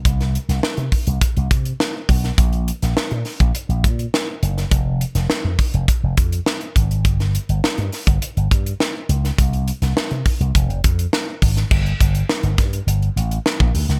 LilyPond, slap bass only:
\new Staff \with { instrumentName = "Slap bass" } { \clef bass \time 4/4 \key f \mixolydian \tempo 4 = 103 c,8. c,16 r16 c16 r16 c,16 r16 c,16 c8 r8 ces,8 | bes,,8. bes,,16 r16 bes,16 r16 bes,,16 r16 bes,,16 bes,8 r8 ges,,8 | f,,8. f,,16 r16 f,16 r16 f,,16 r16 f,,16 f,8 r8 aes,,8 | g,,8. g,,16 r16 g,16 r16 g,,16 r16 g,,16 g,8 r8 des,8 |
c,8. c,16 r16 c16 r16 c,16 f,,16 f,,16 f,8 r8 aes,,8 | g,,8 g,,8 r16 g,,16 g,8 g,,8 a,,8 r16 bes,,16 d,16 des,16 | }